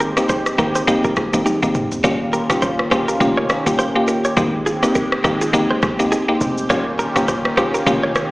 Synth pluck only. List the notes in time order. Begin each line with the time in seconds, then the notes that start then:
0.17 A#3 C4 D#4 G4
0.58 A#3 C4 D#4 G4
0.87 A#3 C4 D#4 G4
1.33 A#3 C4 D#4 G4
1.62 A#3 C4 D#4 G4
2.04 A#3 C#4 F4 G4
2.50 A#3 C#4 F4 G4
2.91 A#3 C#4 F4 G4
3.20 A#3 C#4 F4 G4
3.66 A#3 C#4 F4 G4
3.95 A#3 C#4 F4 G4
4.37 A#3 C4 D#4 G4
4.83 A#3 C4 D#4 G4
5.24 A#3 C4 D#4 G4
5.53 A#3 C4 D#4 G4
5.99 A#3 C4 D#4 G4
6.28 A#3 C4 D#4 G4
6.70 A#3 C#4 F4 G4
7.16 A#3 C#4 F4 G4
7.57 A#3 C#4 F4 G4
7.86 A#3 C#4 F4 G4